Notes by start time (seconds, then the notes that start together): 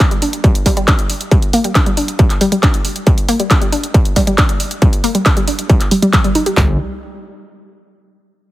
0.00 D4, kick, clap, closed hi-hat
0.11 G3, closed hi-hat
0.22 D4, open hi-hat
0.33 closed hi-hat
0.44 G3, kick, closed hi-hat
0.55 closed hi-hat
0.66 G3, kick, open hi-hat
0.77 G3, closed hi-hat
0.88 D4, kick, clap, closed hi-hat
0.99 closed hi-hat
1.10 open hi-hat
1.21 closed hi-hat
1.31 G3, kick, closed hi-hat
1.42 closed hi-hat
1.53 A#3, open hi-hat
1.64 G3, closed hi-hat
1.75 D4, kick, clap, closed hi-hat
1.86 G3, closed hi-hat
1.97 D4, open hi-hat
2.08 closed hi-hat
2.19 G3, kick, closed hi-hat
2.30 clap, closed hi-hat
2.41 G3, open hi-hat
2.52 G3, closed hi-hat
2.63 D4, kick, clap, closed hi-hat
2.74 closed hi-hat
2.85 open hi-hat
2.96 closed hi-hat
3.07 G3, kick, closed hi-hat
3.18 closed hi-hat
3.29 A#3, open hi-hat
3.40 G3, closed hi-hat
3.51 D4, kick, clap, closed hi-hat
3.62 G3, closed hi-hat
3.72 D4, open hi-hat
3.84 closed hi-hat
3.94 G3, kick, closed hi-hat
4.05 closed hi-hat
4.16 G3, kick, open hi-hat
4.27 G3, closed hi-hat
4.38 D4, kick, clap, closed hi-hat
4.49 closed hi-hat
4.60 open hi-hat
4.71 closed hi-hat
4.82 G3, kick, closed hi-hat
4.93 closed hi-hat
5.04 A#3, open hi-hat
5.15 G3, closed hi-hat
5.26 D4, kick, clap, closed hi-hat
5.37 G3, closed hi-hat
5.48 D4, open hi-hat
5.59 closed hi-hat
5.70 G3, kick, closed hi-hat
5.81 clap, closed hi-hat
5.91 G3, open hi-hat
6.02 G3, closed hi-hat
6.13 G3, kick, clap, closed hi-hat
6.24 G3, closed hi-hat
6.35 D#4, open hi-hat
6.46 G4, closed hi-hat
6.57 G1 G3, kick, clap, floor tom